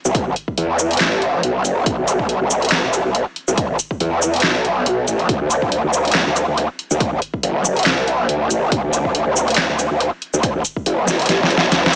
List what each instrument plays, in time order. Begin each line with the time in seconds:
0.05 wobble bass B1, shaker
0.15 kick, closed hi-hat
0.26 wobble bass B1
0.36 closed hi-hat
0.48 kick
0.58 wobble bass E2, closed hi-hat
0.79 shaker
0.91 closed hi-hat
0.93 closed hi-hat
0.97 wobble bass A1, snare, clap, closed hi-hat
1.00 closed hi-hat
1.22 closed hi-hat
1.43 wobble bass B1, closed hi-hat
1.65 wobble bass F#1, closed hi-hat, shaker
1.86 wobble bass B1, kick, closed hi-hat
1.98 wobble bass B1
2.08 closed hi-hat, shaker
2.19 kick
2.29 closed hi-hat
2.41 wobble bass B1
2.50 shaker
2.62 closed hi-hat
2.65 closed hi-hat
2.69 snare, clap, closed hi-hat
2.72 closed hi-hat
2.84 wobble bass B1
2.93 closed hi-hat, shaker
3.05 wobble bass B1
3.15 closed hi-hat
3.36 closed hi-hat
3.48 wobble bass B1, shaker
3.58 kick, closed hi-hat
3.69 wobble bass B1
3.79 closed hi-hat, shaker
3.91 kick
4.00 wobble bass E2, closed hi-hat
4.22 shaker
4.34 closed hi-hat
4.36 closed hi-hat
4.40 wobble bass B1, snare, clap, closed hi-hat
4.65 closed hi-hat
4.86 closed hi-hat
5.08 wobble bass A1, closed hi-hat, shaker
5.19 closed hi-hat
5.29 wobble bass D2, kick, closed hi-hat
5.41 wobble bass D2
5.50 closed hi-hat, shaker
5.62 kick
5.72 closed hi-hat
5.84 wobble bass D2
5.93 shaker
6.05 closed hi-hat
6.08 closed hi-hat
6.12 snare, clap, closed hi-hat
6.15 closed hi-hat
6.26 wobble bass D2
6.36 closed hi-hat, shaker
6.48 wobble bass D2
6.58 closed hi-hat
6.79 closed hi-hat
6.91 wobble bass D2, shaker
7.00 kick, closed hi-hat
7.12 wobble bass D2
7.22 closed hi-hat
7.34 kick
7.43 wobble bass F#1, closed hi-hat
7.65 shaker
7.76 closed hi-hat
7.79 closed hi-hat
7.83 wobble bass C2, snare, clap, closed hi-hat
7.86 closed hi-hat
8.08 closed hi-hat
8.29 wobble bass D2, closed hi-hat
8.50 wobble bass A1, closed hi-hat, shaker
8.72 wobble bass D2, kick, closed hi-hat
8.84 wobble bass D2
8.93 closed hi-hat, shaker
9.05 kick
9.15 closed hi-hat
9.26 wobble bass D2
9.36 shaker
9.48 closed hi-hat
9.50 closed hi-hat
9.54 snare, clap, closed hi-hat
9.58 closed hi-hat
9.69 wobble bass D2
9.79 closed hi-hat, shaker
9.91 wobble bass D2
10.00 closed hi-hat
10.22 closed hi-hat
10.34 wobble bass D2, shaker
10.43 kick, closed hi-hat
10.55 wobble bass D2
10.65 closed hi-hat, shaker
10.76 kick
10.86 wobble bass F#1, closed hi-hat
11.08 snare, shaker
11.19 closed hi-hat
11.22 closed hi-hat
11.26 wobble bass A1, snare, closed hi-hat
11.29 closed hi-hat
11.43 snare
11.50 wobble bass F#1, closed hi-hat
11.58 snare
11.72 wobble bass D2, snare, closed hi-hat
11.86 snare